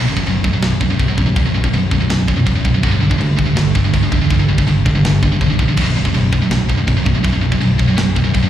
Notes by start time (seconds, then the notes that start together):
Already playing: B0
0.08 B1 F#2
0.17 B1 F#2, kick
0.26 F#1 B1 F#2, china
0.44 A1 B1 F#2, kick
0.54 B1 F#2
0.62 B0 B1 F#2, snare, china
0.81 B0 B1 F#2, kick
0.90 B1 F#2
0.99 B0 B1 F#2, kick, china
1.08 B1 F#2
1.17 A1 B1 F#2, kick
1.26 B1 F#2
1.36 B0 B1 F#2, kick, china
1.46 B1 F#2
1.54 B0 B1 F#2
1.64 B1 F#2, kick
1.73 B0 B1 F#2, china
1.91 B0 B1 F#2, kick
2.00 B1 F#2
2.10 B0 B1 F#2, snare, china
2.28 B0 B1 F#2, kick
2.37 B1 F#2
2.46 E1 B1 F#2, kick, china
2.56 B1 F#2
2.65 B0 B1 F#2, kick
2.74 B1 F#2
2.83 G1 G2 D3 G3, kick, china
2.92 G2 D3
3.01 G2 D3
3.10 G2 D3, kick
3.19 D2 G2 D3, china
3.38 E1 G2 D3, kick
3.46 G2 D3
3.56 G1 G2 D3, snare, china
3.75 G1 G2 D3, kick
3.84 G2 D3
3.93 G1 G2 D3, kick, china
4.03 G2 D3
4.12 E2 G2 D3, kick
4.21 G2 D3
4.30 G1 G2 D3, kick, china
4.39 G2 D3
4.49 G1 G2 D3
4.58 G2 D3, kick
4.67 G1 G2 D3, china
4.85 G1 G2 D3, kick
4.95 G2 D3
5.05 G1 G2 D3, snare, china
5.23 G1 G2 D3, kick
5.32 G2 D3
5.41 B1 G2 D3, kick, china
5.50 G2 D3
5.59 A#1 G2 D3, kick
5.69 G2 D3
5.77 B0 B1 F#2 B2, kick, china, crash
5.87 B1 F#2
5.97 B1 F#2
6.05 B1 F#2, kick
6.14 F#1 B1 F#2, china
6.32 A1 B1 F#2, kick
6.41 B1 F#2
6.51 B0 B1 F#2, snare, china
6.69 B0 B1 F#2, kick
6.77 B1 F#2
6.87 B0 B1 F#2, kick, china
6.97 B1 F#2
7.06 A1 B1 F#2, kick
7.15 B1 F#2
7.24 B0 B1 F#2, kick, china
7.33 B1 F#2
7.42 B0 B1 F#2
7.52 B1 F#2, kick
7.61 B0 B1 F#2, china
7.78 B0 B1 F#2, kick
7.87 B1 F#2
7.96 B0 B1 F#2, snare, china
8.16 B0 B1 F#2, kick
8.24 B1 F#2
8.34 E1 B1 F#2, kick, china
8.43 B1 F#2